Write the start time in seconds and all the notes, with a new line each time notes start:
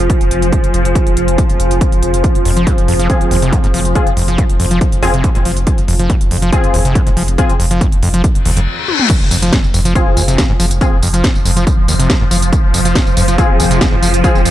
Already playing: F3 F4 C5 G#5
0.10 kick, closed hi-hat
0.21 F1, closed hi-hat
0.31 F1, closed hi-hat
0.42 F1, closed hi-hat
0.53 kick, closed hi-hat
0.64 F1, closed hi-hat
0.74 F1, closed hi-hat
0.85 F1, closed hi-hat
0.95 kick, closed hi-hat
1.07 F1, closed hi-hat
1.17 F1, closed hi-hat
1.28 F1, closed hi-hat
1.38 kick, closed hi-hat
1.50 F1, closed hi-hat
1.60 F1, closed hi-hat
1.71 F1, closed hi-hat
1.81 kick, closed hi-hat
1.92 F1, closed hi-hat
2.03 F1, closed hi-hat
2.14 F1, closed hi-hat
2.24 kick, closed hi-hat
2.35 F1, closed hi-hat
2.45 F1 F2, open hi-hat
2.57 F1 F3, closed hi-hat
2.67 F2, kick, closed hi-hat
2.78 F1, closed hi-hat
2.88 F1 F2, open hi-hat
3.00 F1 F3, closed hi-hat
3.10 C4 F4 G#4, kick, closed hi-hat
3.21 F1, closed hi-hat
3.31 F1 D#2, open hi-hat
3.42 F1 C3, closed hi-hat
3.53 F2, kick, closed hi-hat
3.64 F1 G#2, closed hi-hat
3.74 F1 F3, open hi-hat
3.85 F1, closed hi-hat
3.95 C4 F4 G#4, kick, closed hi-hat
4.07 F1, closed hi-hat
4.17 F1 F2, open hi-hat
4.28 F1 F3, closed hi-hat
4.38 F2, kick, closed hi-hat
4.49 F1, closed hi-hat
4.60 F1 F2, open hi-hat
4.71 F1 F3, closed hi-hat
4.81 kick, closed hi-hat
4.92 F1, closed hi-hat
5.03 F1 D#2 C4 F4 G#4, open hi-hat
5.14 F1 C3, closed hi-hat
5.24 F2, kick, closed hi-hat
5.35 F1 G#2, closed hi-hat
5.45 F1 F3, open hi-hat
5.57 F1, closed hi-hat
5.67 kick, closed hi-hat
5.78 F1, closed hi-hat
5.88 F1 F2, open hi-hat
5.99 F1 F3, closed hi-hat
6.10 F2, kick, closed hi-hat
6.21 F1, closed hi-hat
6.31 F1 F2, open hi-hat
6.42 F1 F3, closed hi-hat
6.53 C4 F4 G#4, kick, closed hi-hat
6.64 F1, closed hi-hat
6.74 F1 D#2, open hi-hat
6.85 F1 C3, closed hi-hat
6.95 F2, kick, closed hi-hat
7.07 F1 G#2, closed hi-hat
7.17 F1 F3, open hi-hat
7.28 F1, closed hi-hat
7.38 C4 F4 G#4, kick, closed hi-hat
7.49 F1, closed hi-hat
7.60 F1 F2, open hi-hat
7.71 F1 F3, closed hi-hat
7.81 F2, kick, closed hi-hat
7.92 F1, closed hi-hat
8.03 F1 F2, open hi-hat
8.14 F1 F3, closed hi-hat
8.24 kick, closed hi-hat, reverse cymbal
8.35 F1, closed hi-hat
8.45 F1 D#2, open hi-hat
8.57 F1 F2, closed hi-hat
8.88 high tom
9.00 mid tom
9.10 F3, kick, closed hi-hat, crash, tambourine, impact
9.21 F1
9.31 F1 F2, open hi-hat, tambourine
9.42 F1 F3, closed hi-hat, tambourine
9.53 F2, kick, snare, closed hi-hat, tambourine
9.64 F1, tambourine
9.74 F1 F2, open hi-hat, tambourine
9.85 F1 F3, closed hi-hat, tambourine
9.95 C4 F4 G#4, kick, closed hi-hat, tambourine
10.07 F1
10.17 F1 D#2, open hi-hat, tambourine
10.28 F1 C3, closed hi-hat, tambourine
10.38 F2, kick, snare, closed hi-hat, tambourine
10.49 F1 G#2
10.60 F1 F3, open hi-hat, tambourine
10.71 F1, closed hi-hat, tambourine
10.81 C4 F4 G#4, kick, closed hi-hat, tambourine
10.92 F1
11.03 F1 F2, open hi-hat, tambourine
11.14 F1 F3, closed hi-hat, tambourine
11.24 F2, kick, snare, closed hi-hat, tambourine
11.35 F1, tambourine
11.45 F1 F2, open hi-hat, tambourine
11.57 F1 F3, closed hi-hat, tambourine
11.67 kick, closed hi-hat, tambourine
11.78 F1
11.88 F1 D#2, open hi-hat, tambourine
11.99 F1 C3, closed hi-hat, tambourine
12.10 F2, kick, snare, closed hi-hat, tambourine
12.21 F1 G#2
12.31 F1 F3, open hi-hat, tambourine
12.42 F1, closed hi-hat, tambourine
12.53 kick, closed hi-hat, tambourine
12.64 F1
12.74 F1 F2, open hi-hat, tambourine
12.85 F1 F3, closed hi-hat, tambourine
12.95 F2, kick, snare, closed hi-hat, tambourine
13.07 F1, tambourine
13.17 F1 F2, open hi-hat, tambourine
13.28 F1 F3, closed hi-hat, tambourine
13.38 C4 F4 G#4, kick, closed hi-hat, tambourine
13.49 F1
13.60 F1 D#2, open hi-hat, tambourine
13.71 F1 C3, closed hi-hat, tambourine
13.81 F2, kick, snare, closed hi-hat, tambourine
13.92 F1 G#2
14.03 F1 F3, open hi-hat, tambourine
14.14 F1, closed hi-hat, tambourine
14.24 C4 F4 G#4, kick, closed hi-hat, tambourine
14.35 F1, tambourine
14.45 F1 F2, open hi-hat, tambourine